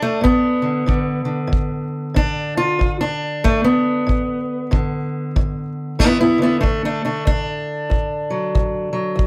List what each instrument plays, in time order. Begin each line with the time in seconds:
Already playing: steel-string acoustic guitar G2 D4
0.02 steel-string acoustic guitar A3
0.21 steel-string acoustic guitar G2 B3, kick
0.62 steel-string acoustic guitar D3
0.86 steel-string acoustic guitar G2 D3, kick
1.25 steel-string acoustic guitar D3
1.47 steel-string acoustic guitar G2
1.53 kick
2.14 steel-string acoustic guitar G2 D4, kick
2.57 steel-string acoustic guitar F4
2.79 steel-string acoustic guitar G2, kick
3.01 steel-string acoustic guitar D4
3.44 steel-string acoustic guitar G2 A3, kick
3.64 steel-string acoustic guitar B3
4.07 steel-string acoustic guitar G2, kick
4.71 steel-string acoustic guitar G2 D3, kick
5.36 steel-string acoustic guitar G2, kick
5.99 steel-string acoustic guitar G2 B3 E4, kick
6.21 steel-string acoustic guitar B3 E4
6.38 steel-string acoustic guitar D3 B3
6.43 steel-string acoustic guitar E4
6.60 steel-string acoustic guitar G2 A3 D4, kick
6.85 steel-string acoustic guitar A3 D4
7.05 steel-string acoustic guitar A3 D4
7.25 steel-string acoustic guitar D2 D4, kick
7.90 steel-string acoustic guitar D2, kick
8.30 steel-string acoustic guitar F#3
8.55 steel-string acoustic guitar D2, kick
8.93 steel-string acoustic guitar F#3
9.16 steel-string acoustic guitar D2, kick